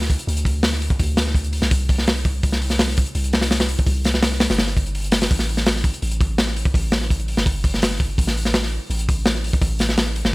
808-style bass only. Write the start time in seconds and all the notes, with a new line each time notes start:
Already playing: D2
0.27 D2
1.00 D2
1.62 C2
2.43 C2
3.15 C2
3.87 C2
4.50 G1
5.31 A1
6.02 A1
6.74 A1
7.37 G1
8.18 A1
8.90 A1
9.62 A1
10.25 G1